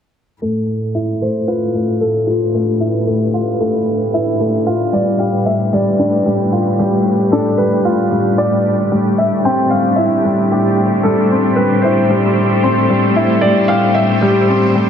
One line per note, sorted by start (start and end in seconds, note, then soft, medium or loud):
0.42 4.64 A2 medium
0.42 14.90 A3 medium
0.42 0.67 A3 medium
0.61 14.90 D4 medium
0.88 8.91 B4 medium
0.95 1.20 E4 medium
1.15 14.90 G4 medium
1.21 1.47 A3 medium
1.21 1.49 C5 medium
1.47 1.73 F4 medium
1.47 2.03 B4 medium
1.75 2.00 A3 medium
2.01 2.28 A4 medium
2.01 2.26 A4 medium
2.27 3.83 F4 medium
2.54 2.70 A3 medium
2.80 3.06 E4 medium
3.07 3.33 A3 medium
3.34 3.49 F4 medium
3.60 3.86 A3 medium
4.14 4.39 E4 medium
4.40 4.65 A3 medium
4.67 8.89 A2 medium
4.67 4.92 F4 medium
4.93 5.18 G3 medium
4.93 5.21 D5 medium
5.19 5.45 G4 medium
5.19 5.47 F5 medium
5.46 5.74 E5 medium
5.73 5.88 G3 medium
5.73 6.83 D5 medium
5.99 6.25 D4 medium
6.26 6.51 G3 medium
6.52 6.68 F4 medium
6.79 7.05 G3 medium
6.79 7.34 G4 medium
7.32 7.58 D4 medium
7.32 7.59 A4 medium
7.58 7.84 G3 medium
7.58 8.34 B4 medium
7.85 8.11 F4 medium
8.12 8.37 G3 medium
8.38 8.64 D5 medium
8.92 14.90 A2 medium
8.92 9.17 G3 medium
9.12 14.90 C5 medium
9.18 9.46 E5 medium
9.45 9.70 C4 medium
9.45 9.72 G5 medium
9.70 9.97 G3 medium
9.70 9.98 F5 medium
9.96 10.23 E4 medium
9.96 11.06 E5 medium
10.25 10.50 G3 medium
10.51 10.76 G4 medium
11.03 11.19 G3 medium
11.03 11.58 A4 medium
11.31 11.56 C4 medium
11.56 11.83 G3 medium
11.56 11.84 B4 medium
11.82 11.99 E4 medium
11.82 12.58 C5 medium
12.10 12.36 G3 medium
12.63 12.89 C4 medium
12.90 13.15 G3 medium
13.16 13.42 E4 medium
13.41 13.68 G3 medium
13.41 13.70 D5 medium
13.68 13.95 G4 medium
13.68 13.96 F5 medium
13.94 14.23 E5 medium
14.21 14.38 G3 medium
14.21 14.90 G4 medium
14.49 14.74 C4 medium
14.75 14.90 G3 medium